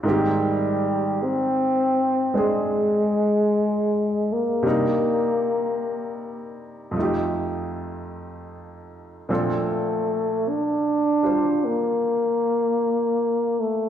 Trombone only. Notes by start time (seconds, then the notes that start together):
0.09 G3
1.24 C4
2.40 G#3
4.33 A#3
9.33 A3
10.49 D4
11.65 A#3
13.60 A3